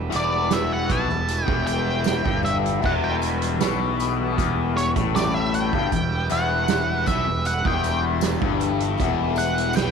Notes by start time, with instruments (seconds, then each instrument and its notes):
Already playing: tanpura E2 B2 E3, transistor combo organ G3 E4 B4
0.10 overdriven electric guitar E2, closed hi-hat, tambourine
0.14 fingered electric bass E1, lead electric guitar D5
0.42 tanpura B2
0.51 lead electric guitar E5, snare, closed hi-hat, tambourine
0.72 lead electric guitar F#5
0.88 fingered electric bass B1, overdriven electric guitar B2, lead electric guitar A5, kick, closed hi-hat
1.07 fingered electric bass E1, overdriven electric guitar E2, tanpura E3, snare
1.28 closed hi-hat, tambourine
1.45 fingered electric bass E1, overdriven electric guitar E2, lead electric guitar G5, kick
1.67 tanpura E3, lead electric guitar G5, closed hi-hat, tambourine
2.04 snare, closed hi-hat, tambourine
2.24 fingered electric bass G1, overdriven electric guitar G2, kick
2.32 tanpura E2
2.43 lead electric guitar E5, closed hi-hat, tambourine
2.66 closed hi-hat
2.81 fingered electric bass E1, overdriven electric guitar E2, kick, crash, tambourine
2.86 lead electric guitar F#5
2.93 tanpura B2
3.04 lead electric guitar G5
3.22 closed hi-hat, tambourine
3.42 closed hi-hat
3.56 tanpura E3
3.61 fingered electric bass B1, overdriven electric guitar B2, snare, closed hi-hat, tambourine
4.00 closed hi-hat, tambourine
4.20 tanpura E3
4.38 fingered electric bass E1, overdriven electric guitar E2, kick, closed hi-hat, tambourine
4.77 tanpura E2, lead electric guitar C#5, closed hi-hat, tambourine
4.96 fingered electric bass A1, overdriven electric guitar A2, kick, closed hi-hat
5.16 lead electric guitar D5, snare, closed hi-hat, tambourine
5.34 lead electric guitar E5
5.43 tanpura B2
5.54 lead electric guitar G5, closed hi-hat, tambourine
5.73 fingered electric bass G1, overdriven electric guitar G2, kick
5.92 fingered electric bass E1, overdriven electric guitar E2, kick, closed hi-hat, tambourine
6.05 tanpura E3
6.29 fingered electric bass E1, overdriven electric guitar E2, lead electric guitar F#5, closed hi-hat, tambourine
6.67 tanpura E3, snare, closed hi-hat, tambourine
7.06 fingered electric bass B1, overdriven electric guitar B2, lead electric guitar E5, kick, closed hi-hat, tambourine
7.27 fingered electric bass E1, overdriven electric guitar E2, tanpura E2
7.45 lead electric guitar F#5, closed hi-hat, tambourine
7.65 fingered electric bass E1, overdriven electric guitar E2, lead electric guitar G5, kick
7.84 closed hi-hat, tambourine
7.90 tanpura B2
8.21 snare, closed hi-hat, tambourine
8.42 fingered electric bass G1, overdriven electric guitar G2, kick
8.53 tanpura E3
8.60 closed hi-hat, tambourine
8.80 closed hi-hat
8.98 fingered electric bass E1, overdriven electric guitar E2, kick, closed hi-hat, tambourine
9.14 tanpura E3
9.36 lead electric guitar F#5, closed hi-hat, tambourine
9.58 closed hi-hat
9.73 tanpura E2, lead electric guitar G5, snare, closed hi-hat, tambourine
9.78 fingered electric bass B1, overdriven electric guitar B2